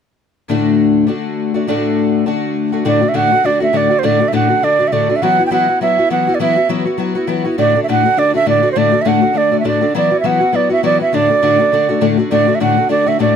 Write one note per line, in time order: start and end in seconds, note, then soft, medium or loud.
0.48 1.08 D2 medium
0.48 1.08 A2 medium
0.48 1.06 D3 medium
0.48 1.08 A3 medium
0.48 1.07 D4 medium
0.48 1.09 F#4 medium
1.07 1.55 D3 medium
1.07 1.54 A3 medium
1.07 1.55 D4 medium
1.07 1.54 F#4 medium
1.54 1.67 D3 soft
1.54 1.67 A3 soft
1.54 1.68 D4 soft
1.54 1.67 F#4 soft
1.67 2.26 D2 medium
1.67 2.27 A2 medium
1.67 2.26 D3 medium
1.67 2.26 A3 medium
1.67 2.26 D4 medium
1.67 2.27 F#4 medium
2.26 2.73 D3 soft
2.26 2.73 A3 medium
2.26 2.73 D4 medium
2.26 2.72 F#4 medium
2.73 2.84 D3 soft
2.73 2.84 A3 soft
2.73 2.84 D4 soft
2.73 2.85 F#4 medium
2.85 3.02 D2 medium
2.85 3.02 A2 medium
2.85 3.02 D3 medium
2.85 3.00 A3 medium
2.85 3.01 D4 medium
2.85 3.00 F#4 medium
2.85 3.10 D5 medium
3.01 3.13 D3 soft
3.01 3.13 A3 soft
3.01 3.13 D4 soft
3.01 3.14 F#4 soft
3.09 3.17 E5 medium
3.14 3.31 D2 medium
3.14 3.31 A2 medium
3.14 3.31 D3 medium
3.14 3.31 A3 medium
3.14 3.31 D4 medium
3.14 3.30 F#4 medium
3.14 3.47 F#5 medium
3.32 3.43 D3 soft
3.32 3.44 A3 soft
3.32 3.43 D4 soft
3.32 3.44 F#4 soft
3.44 3.61 D3 medium
3.44 3.60 A3 medium
3.44 3.60 D4 medium
3.44 3.59 F#4 medium
3.44 3.62 D5 medium
3.60 3.72 D3 soft
3.60 3.73 A3 soft
3.60 3.73 D4 soft
3.60 3.73 F#4 medium
3.60 3.78 E5 medium
3.73 3.90 D2 medium
3.73 3.90 A2 medium
3.73 3.90 D3 soft
3.73 3.89 A3 medium
3.73 3.90 D4 medium
3.73 3.89 F#4 medium
3.73 4.01 D5 medium
3.90 4.02 D3 soft
3.90 4.03 A3 soft
3.90 4.03 D4 soft
3.90 4.03 F#4 soft
3.99 4.20 D2 medium
3.99 4.07 C5 medium
4.03 4.20 A2 medium
4.03 4.20 D3 medium
4.03 4.19 A3 medium
4.03 4.20 D4 medium
4.03 4.19 F#4 medium
4.03 4.30 D5 medium
4.20 4.32 D3 soft
4.20 4.32 A3 soft
4.20 4.32 D4 soft
4.20 4.32 F#4 soft
4.28 4.34 E5 medium
4.32 4.49 D2 medium
4.32 4.50 A2 medium
4.32 4.49 D3 medium
4.32 4.48 A3 medium
4.32 4.49 D4 medium
4.32 4.47 F#4 medium
4.32 4.65 F#5 medium
4.49 4.61 D3 soft
4.49 4.62 A3 soft
4.49 4.62 D4 soft
4.49 4.62 F#4 soft
4.62 4.79 D3 medium
4.62 4.79 A3 soft
4.62 4.79 D4 medium
4.62 4.78 F#4 medium
4.62 4.89 D5 medium
4.79 4.91 D3 soft
4.79 4.92 A3 soft
4.79 4.92 D4 soft
4.79 4.92 F#4 soft
4.88 4.94 E5 medium
4.92 5.09 D2 medium
4.92 5.09 A2 medium
4.92 5.09 D3 medium
4.92 5.08 A3 medium
4.92 5.09 D4 medium
4.92 5.08 F#4 medium
4.92 5.17 D5 medium
5.09 5.22 D3 soft
5.09 5.22 A3 soft
5.09 5.22 D4 soft
5.09 5.22 F#4 soft
5.16 5.24 E5 medium
5.22 5.38 E3 medium
5.22 5.39 F#3 medium
5.22 5.39 B3 medium
5.22 5.38 E4 medium
5.22 5.37 F#4 medium
5.22 5.45 F#5 loud
5.38 5.50 B3 soft
5.38 5.51 E4 soft
5.38 5.51 F#4 soft
5.46 5.52 G5 medium
5.51 5.68 E3 medium
5.51 5.68 F#3 medium
5.51 5.68 B3 medium
5.51 5.68 E4 medium
5.51 5.67 F#4 medium
5.51 5.79 F#5 medium
5.68 5.80 B3 soft
5.68 5.81 E4 soft
5.68 5.81 F#4 soft
5.81 5.98 F#3 medium
5.81 5.98 B3 medium
5.81 5.97 E4 medium
5.81 5.97 F#4 medium
5.81 6.09 E5 medium
5.98 6.09 B3 soft
5.98 6.10 E4 soft
5.98 6.10 F#4 soft
6.10 6.27 E3 medium
6.10 6.27 F#3 medium
6.10 6.27 B3 medium
6.10 6.27 E4 medium
6.10 6.26 F#4 medium
6.10 6.36 F#5 medium
6.27 6.39 B3 soft
6.27 6.39 E4 soft
6.27 6.40 F#4 soft
6.35 6.40 D5 medium
6.39 6.56 E3 medium
6.39 6.57 F#3 medium
6.39 6.57 B3 medium
6.39 6.55 E4 medium
6.39 6.55 F#4 medium
6.39 6.68 E5 medium
6.56 6.68 B3 soft
6.56 6.69 E4 soft
6.56 6.69 F#4 soft
6.69 6.86 E3 medium
6.69 6.86 F#3 medium
6.69 6.86 B3 medium
6.69 6.85 E4 medium
6.69 6.84 F#4 medium
6.85 6.97 B3 soft
6.85 6.98 E4 soft
6.85 6.98 F#4 soft
6.98 7.15 F#3 medium
6.98 7.15 B3 medium
6.98 7.14 E4 medium
6.98 7.14 F#4 medium
7.15 7.27 B3 soft
7.15 7.28 E4 soft
7.15 7.28 F#4 medium
7.27 7.45 E3 medium
7.27 7.45 F#3 medium
7.27 7.45 B3 medium
7.27 7.44 E4 medium
7.27 7.43 F#4 medium
7.45 7.58 B3 soft
7.45 7.58 E4 soft
7.45 7.58 F#4 soft
7.58 7.75 D2 medium
7.58 7.75 A2 medium
7.58 7.75 D3 medium
7.58 7.74 A3 medium
7.58 7.75 D4 medium
7.58 7.74 F#4 medium
7.58 7.80 D5 medium
7.75 7.88 D3 soft
7.75 7.88 A3 soft
7.75 7.88 D4 soft
7.75 7.88 F#4 soft
7.84 7.86 E5 medium
7.88 8.05 D2 medium
7.88 8.05 A2 medium
7.88 8.05 D3 medium
7.88 8.04 A3 medium
7.88 8.04 D4 medium
7.88 8.03 F#4 medium
7.88 8.20 F#5 medium
8.04 8.16 D3 soft
8.04 8.16 A3 soft
8.04 8.16 D4 soft
8.04 8.17 F#4 soft
8.17 8.34 D3 medium
8.17 8.33 A3 soft
8.17 8.34 D4 medium
8.17 8.32 F#4 medium
8.17 8.35 D5 medium
8.34 8.45 D3 soft
8.34 8.46 A3 soft
8.34 8.46 D4 soft
8.34 8.46 F#4 soft
8.34 8.47 E5 medium
8.46 8.63 D2 medium
8.46 8.63 A2 medium
8.46 8.62 D3 medium
8.46 8.62 A3 medium
8.46 8.62 D4 medium
8.46 8.61 F#4 medium
8.46 8.69 D5 medium
8.62 8.75 D3 soft
8.62 8.75 A3 soft
8.62 8.75 D4 soft
8.62 8.75 F#4 medium
8.72 8.92 D2 medium
8.72 8.93 A2 medium
8.72 8.93 D3 medium
8.72 8.79 C5 medium
8.76 8.92 A3 medium
8.76 8.92 D4 medium
8.76 8.91 F#4 medium
8.76 9.03 D5 loud
8.92 9.04 D3 soft
8.92 9.04 A3 soft
8.92 9.04 D4 soft
8.92 9.05 F#4 soft
9.02 9.22 D2 medium
9.02 9.22 A2 medium
9.02 9.22 D3 medium
9.02 9.09 E5 medium
9.06 9.21 A3 medium
9.06 9.21 D4 medium
9.06 9.20 F#4 medium
9.06 9.39 F#5 medium
9.21 9.32 D3 soft
9.21 9.33 A3 soft
9.21 9.33 D4 soft
9.21 9.34 F#4 soft
9.33 9.51 D3 medium
9.33 9.50 A3 medium
9.33 9.51 D4 medium
9.33 9.50 F#4 medium
9.37 9.59 D5 medium
9.51 9.64 D3 soft
9.51 9.64 A3 soft
9.51 9.64 D4 soft
9.51 9.64 F#4 soft
9.60 9.65 E5 medium
9.64 9.81 D2 medium
9.64 9.81 A2 medium
9.64 9.82 D3 medium
9.64 9.80 A3 medium
9.64 9.81 D4 medium
9.64 9.80 F#4 medium
9.64 9.94 D5 medium
9.81 9.94 D3 soft
9.81 9.94 A3 soft
9.81 9.95 D4 soft
9.81 9.94 F#4 soft
9.94 10.11 E3 medium
9.94 10.11 F#3 medium
9.94 10.11 B3 medium
9.94 10.10 E4 medium
9.94 10.10 F#4 medium
9.94 10.17 D5 medium
10.11 10.23 B3 soft
10.11 10.23 E4 soft
10.11 10.24 F#4 soft
10.20 10.41 E3 medium
10.20 10.41 F#3 medium
10.20 10.28 E5 medium
10.24 10.40 B3 medium
10.24 10.40 E4 medium
10.24 10.39 F#4 medium
10.24 10.57 F#5 medium
10.40 10.52 B3 soft
10.40 10.53 E4 soft
10.40 10.53 F#4 soft
10.52 10.70 F#3 medium
10.52 10.70 B3 medium
10.52 10.69 E4 medium
10.52 10.68 F#4 medium
10.52 10.71 D5 medium
10.69 10.82 B3 soft
10.69 10.83 E4 soft
10.69 10.83 F#4 soft
10.69 10.83 E5 medium
10.83 11.00 E3 medium
10.83 11.00 F#3 medium
10.83 11.00 B3 medium
10.83 10.99 E4 medium
10.83 10.99 F#4 medium
10.83 11.00 D5 medium
11.00 11.13 B3 soft
11.00 11.13 E4 soft
11.00 11.12 F#4 soft
11.00 11.16 E5 medium
11.13 11.29 D2 medium
11.13 11.29 A2 medium
11.13 11.30 D3 medium
11.13 11.29 A3 medium
11.13 11.29 D4 medium
11.13 11.28 F#4 medium
11.13 12.06 D5 medium
11.29 11.41 D3 soft
11.29 11.42 A3 soft
11.29 11.42 D4 soft
11.29 11.42 F#4 soft
11.42 11.59 D2 medium
11.42 11.59 A2 medium
11.42 11.59 D3 medium
11.42 11.59 A3 medium
11.42 11.59 D4 medium
11.42 11.57 F#4 medium
11.58 11.71 D3 soft
11.58 11.72 A3 soft
11.58 11.72 D4 soft
11.58 11.71 F#4 soft
11.72 11.89 D3 medium
11.72 11.88 A3 medium
11.72 11.88 D4 medium
11.72 11.87 F#4 medium
11.89 12.00 D3 soft
11.89 12.00 A3 soft
11.89 12.01 D4 soft
11.89 12.01 F#4 medium
12.01 12.18 D2 medium
12.01 12.18 A2 medium
12.01 12.18 D3 medium
12.01 12.18 A3 medium
12.01 12.18 D4 medium
12.01 12.16 F#4 medium
12.18 12.30 D3 soft
12.18 12.31 A3 soft
12.18 12.30 D4 soft
12.18 12.30 F#4 soft
12.31 12.47 D2 medium
12.31 12.48 A2 medium
12.31 12.48 D3 medium
12.31 12.47 A3 medium
12.31 12.47 D4 medium
12.31 12.46 F#4 medium
12.31 12.56 D5 medium
12.47 12.60 D3 soft
12.47 12.60 A3 soft
12.47 12.60 D4 soft
12.47 12.60 F#4 soft
12.55 12.61 E5 medium
12.60 12.77 D2 medium
12.60 12.77 A2 medium
12.60 12.77 D3 medium
12.60 12.77 A3 medium
12.60 12.77 D4 medium
12.60 12.76 F#4 medium
12.60 12.89 F#5 medium
12.77 12.88 D3 soft
12.77 12.89 A3 soft
12.77 12.88 D4 soft
12.77 12.90 F#4 soft
12.89 13.06 D3 medium
12.89 13.06 A3 medium
12.89 13.06 D4 medium
12.89 13.05 F#4 medium
12.89 13.10 D5 medium
13.06 13.19 D3 soft
13.06 13.19 A3 soft
13.06 13.19 D4 soft
13.06 13.19 F#4 soft
13.06 13.20 E5 medium
13.19 13.36 D2 medium
13.19 13.36 A2 medium
13.19 13.36 D3 medium
13.19 13.36 A3 medium
13.19 13.36 D4 medium
13.19 13.36 F#4 medium
13.19 13.36 D5 medium